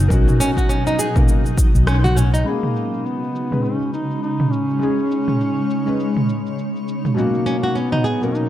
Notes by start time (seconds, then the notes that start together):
Already playing: B2 F#3 B3 D#4 F#4 B4
0.08 B1 C#4 D#4 A#4, kick, shaker
0.13 F#4
0.28 mid tom, shaker
0.40 C#4, shaker
0.57 F#4, kick, shaker
0.69 C#4, shaker
0.87 D#4, shaker
0.99 G#4, shaker
1.15 A#3 C#4 D#4 A#4, kick, mid tom, shaker
1.28 shaker
1.46 shaker
1.58 kick, shaker
1.75 B1, shaker
1.87 C#4, cross-stick, shaker
2.04 F#4, mid tom, shaker
2.16 C#4, shaker
2.34 D#4, shaker
2.44 C#3 G#3 A#3 C#4 D#4 B5, shaker
2.48 G#4
2.63 mid tom, shaker
2.76 shaker
2.94 shaker
3.02 G#3 B3
3.06 shaker
3.24 shaker
3.35 shaker
3.51 G#3 C#4 D#4 B4, mid tom, shaker
3.64 C#4, shaker
3.75 C#5
3.82 shaker
3.93 D#4, shaker
4.11 shaker
4.22 D#4, shaker
4.40 mid tom, shaker
4.51 C#4, shaker
4.70 shaker
4.79 G#3 C#4 D#4, shaker
4.83 G#4
4.99 shaker
5.11 shaker
5.28 mid tom, shaker
5.41 shaker
5.58 shaker
5.70 shaker
5.86 G#3 C#4 D#4 B4, shaker
6.00 shaker
6.17 mid tom, shaker
6.29 shaker
6.47 shaker
6.59 shaker
6.76 shaker
6.88 shaker
7.05 mid tom, shaker
7.14 B2 F#3 A#3 C#4 D#4, shaker
7.19 F#4
7.35 shaker
7.40 F#3
7.46 C#4, shaker
7.63 F#4, shaker
7.75 B3 C#4, shaker
7.92 D#4, mid tom, shaker
8.04 G#4, shaker
8.22 B2 A#3 C#4 D#4 A#4, shaker
8.32 A#3 D#4, shaker